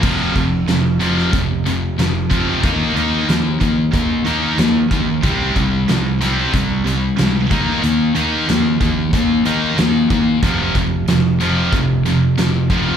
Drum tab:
CC |x---------------|----------------|----------------|----------------|
HH |--x-x-x-x-x-x-x-|x-x-x-x-x-x-x-x-|x-x-x-x-x-x-x-x-|x-x-x-x-x-x-x-x-|
SD |----o-oo----o---|----o-------o---|----o-o-----o---|----o-------o---|
BD |o-o-----o-----o-|o-----o-o-----o-|o-o-----o-----o-|------o-o-----o-|

CC |----------------|
HH |x-x-x-x-x-x-x-x-|
SD |----o-------o---|
BD |o-o-----o-----o-|